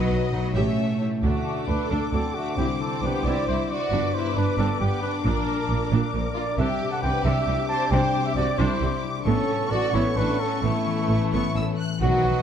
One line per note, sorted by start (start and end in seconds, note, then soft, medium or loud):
0.00 0.57 B2 medium
0.00 0.31 F#3 medium
0.00 0.31 D#4 medium
0.00 0.32 F#4 soft
0.00 0.53 F#4 medium
0.00 0.55 B4 medium
0.00 0.57 B4 medium
0.00 0.51 D#5 medium
0.09 0.17 B1 soft
0.09 0.57 B3 soft
0.09 0.18 F#4 soft
0.31 0.39 B1 soft
0.31 0.54 F#3 medium
0.31 0.40 D#4 soft
0.31 0.57 D#4 soft
0.31 0.57 F#4 soft
0.54 0.62 A1 medium
0.54 1.25 A2 soft
0.54 1.23 A3 medium
0.54 0.89 C#4 medium
0.54 0.76 G4 medium
0.54 1.02 C#5 soft
0.54 1.03 E5 soft
0.78 1.25 C#4 soft
1.01 1.25 E4 soft
1.01 1.25 G4 soft
1.23 1.31 D2 medium
1.23 2.60 D3 soft
1.23 1.65 A3 medium
1.23 1.44 D4 soft
1.23 3.89 D4 soft
1.23 1.65 F#4 medium
1.23 2.54 A4 soft
1.23 2.55 A4 soft
1.23 3.88 D6 soft
1.46 2.35 D4 soft
1.68 1.76 D2 soft
1.68 1.76 A3 soft
1.68 1.89 D4 medium
1.68 2.60 A4 soft
1.68 1.92 B4 medium
1.90 1.98 D2 medium
1.90 1.99 D2 medium
1.90 2.11 D4 medium
1.90 1.99 D4 soft
1.90 2.12 A4 medium
1.90 3.24 D5 soft
2.12 2.20 D2 soft
2.12 2.21 D2 soft
2.12 2.21 F#3 soft
2.12 2.35 C4 soft
2.12 2.60 F#4 soft
2.12 2.36 A4 medium
2.35 2.58 A3 medium
2.35 2.80 D4 soft
2.35 2.57 F#4 medium
2.57 2.65 C2 medium
2.57 3.94 C3 soft
2.57 2.81 C4 medium
2.57 2.78 E4 soft
2.57 3.90 E4 soft
2.57 2.68 G4 medium
2.57 3.89 C5 soft
2.81 3.04 C4 medium
2.81 3.70 D4 soft
2.81 3.02 A4 medium
3.02 3.10 C2 soft
3.02 3.12 C2 soft
3.02 3.26 B3 medium
3.02 3.11 D4 soft
3.02 3.26 G4 medium
3.02 3.94 C5 soft
3.24 3.32 C2 medium
3.24 3.34 C2 medium
3.24 3.47 E4 medium
3.24 3.48 G4 medium
3.24 3.47 D5 medium
3.47 3.55 C2 soft
3.47 3.56 C2 soft
3.47 3.56 C4 soft
3.47 3.70 E4 medium
3.47 3.94 E4 soft
3.47 3.57 C5 medium
3.69 4.13 D4 soft
3.69 4.14 F#4 medium
3.69 4.16 D5 medium
3.91 4.00 G1 medium
3.91 5.27 G2 soft
3.91 4.00 G2 medium
3.91 5.23 B3 soft
3.91 4.12 D4 soft
3.91 6.55 D4 soft
3.91 5.22 B4 soft
3.91 6.55 D6 medium
4.14 5.02 D4 soft
4.14 4.37 E4 medium
4.14 4.36 C5 medium
4.35 4.44 G1 soft
4.35 4.45 G2 soft
4.35 4.43 B3 soft
4.35 4.59 D4 medium
4.35 4.58 B4 medium
4.35 5.27 B4 soft
4.58 4.66 G1 medium
4.58 4.67 G2 medium
4.58 4.68 C4 medium
4.58 4.79 D4 medium
4.58 4.80 A4 medium
4.58 5.92 D5 soft
4.80 4.88 G1 soft
4.80 4.89 G2 soft
4.80 4.88 G3 soft
4.80 5.03 B3 medium
4.80 5.01 G4 medium
4.80 5.27 G4 soft
5.02 5.47 D4 soft
5.02 5.25 D4 medium
5.02 5.12 B4 medium
5.25 5.33 A#1 medium
5.25 5.33 A#2 medium
5.25 6.61 A#2 medium
5.25 6.56 A#3 soft
5.25 5.46 D4 medium
5.25 5.91 D4 medium
5.25 5.90 A#4 medium
5.25 6.56 A#4 medium
5.48 6.36 D4 soft
5.69 5.77 A#1 soft
5.69 5.78 A#2 soft
5.69 5.78 A#3 soft
5.69 6.61 A#4 soft
5.91 5.99 A#1 medium
5.91 6.00 A#2 medium
5.91 6.13 D4 medium
5.91 7.24 D5 soft
6.14 6.22 A#1 soft
6.14 6.22 A#2 soft
6.14 6.22 F3 soft
6.14 6.61 F4 soft
6.36 6.80 D4 soft
6.36 6.44 F4 medium
6.36 6.57 D5 medium
6.58 6.66 C2 medium
6.58 7.91 C3 medium
6.58 6.67 C3 medium
6.58 9.10 C4 medium
6.58 9.10 D4 medium
6.58 6.79 D4 medium
6.58 6.91 G4 medium
6.58 9.26 G4 medium
6.58 6.91 E5 medium
6.58 9.22 D6 medium
6.81 7.68 D4 soft
6.92 7.03 A4 medium
6.92 7.02 F#5 medium
7.02 7.11 C2 medium
7.02 7.12 C3 soft
7.02 7.11 C4 soft
7.02 8.35 G4 medium
7.02 7.24 B4 medium
7.02 7.25 G5 medium
7.24 7.33 C2 medium
7.24 7.33 C3 medium
7.24 7.46 D4 medium
7.24 7.69 G4 medium
7.24 8.57 D5 soft
7.24 7.69 E5 medium
7.47 7.55 C2 medium
7.47 7.55 C3 soft
7.47 7.56 G3 medium
7.47 8.79 E4 soft
7.69 9.02 D4 soft
7.69 7.91 C5 medium
7.69 7.93 A5 medium
7.91 7.99 C2 medium
7.91 7.99 C3 medium
7.91 9.28 C3 medium
7.91 8.13 D4 medium
7.91 8.25 C5 medium
7.91 8.25 G5 medium
8.14 9.28 G3 soft
8.26 8.37 G4 medium
8.26 8.35 E5 medium
8.36 8.44 C2 soft
8.36 8.45 C3 medium
8.36 8.46 C4 soft
8.36 8.46 F#4 medium
8.36 9.28 G4 medium
8.36 8.60 D5 medium
8.58 8.66 C2 medium
8.58 8.67 C3 medium
8.58 8.80 D4 medium
8.58 9.02 E4 medium
8.58 9.03 C5 medium
8.58 9.27 D5 soft
8.81 8.89 C2 medium
8.81 8.89 C3 medium
8.81 8.89 G3 soft
8.81 10.16 E4 soft
9.03 9.27 D4 soft
9.25 9.33 A1 medium
9.25 9.33 A2 medium
9.25 10.62 A2 medium
9.25 9.47 B3 medium
9.25 11.75 B3 medium
9.25 9.68 C#4 medium
9.25 11.75 C#4 medium
9.25 11.77 A4 medium
9.25 9.73 A4 medium
9.25 11.24 C#6 medium
9.48 10.40 C#4 soft
9.70 9.79 A1 soft
9.70 9.78 A2 medium
9.70 9.80 A3 soft
9.70 9.94 F#4 medium
9.70 11.08 B4 soft
9.70 9.96 D5 medium
9.93 10.01 A1 medium
9.93 10.01 A2 medium
9.93 10.16 B3 medium
9.93 10.02 E4 medium
9.93 11.32 C#5 soft
9.93 10.18 C#5 medium
10.17 10.25 A1 soft
10.17 10.25 A2 soft
10.17 10.25 E3 soft
10.17 10.40 D4 medium
10.17 11.54 E4 soft
10.17 10.41 B4 medium
10.40 11.77 C#4 soft
10.40 10.64 C#4 medium
10.40 10.63 A4 medium
10.62 10.71 A1 medium
10.62 10.70 A2 medium
10.62 12.03 A2 medium
10.62 11.77 A3 medium
10.62 10.84 B3 medium
10.62 11.76 E4 medium
10.86 12.03 E3 soft
11.08 11.18 A1 soft
11.08 11.16 A2 soft
11.08 11.18 A3 soft
11.08 12.23 B4 soft
11.32 11.40 A1 medium
11.32 11.40 A2 medium
11.32 11.54 B3 medium
11.32 12.03 C#5 soft
11.32 11.53 C#6 medium
11.54 11.64 A1 soft
11.54 11.62 A2 soft
11.54 11.63 E3 soft
11.54 12.03 E4 soft
11.54 11.64 E6 medium
11.78 12.03 C#4 soft
11.78 12.01 F#6 medium
12.00 12.09 B1 medium
12.00 12.42 B2 medium
12.00 12.42 D#3 medium
12.00 12.42 F#3 medium
12.00 12.23 F#4 medium
12.00 12.42 F#4 medium
12.00 12.42 B4 medium
12.00 12.42 D#5 medium
12.00 12.42 F#5 medium
12.24 12.32 B1 soft
12.24 12.32 F#4 soft
12.24 12.42 B4 soft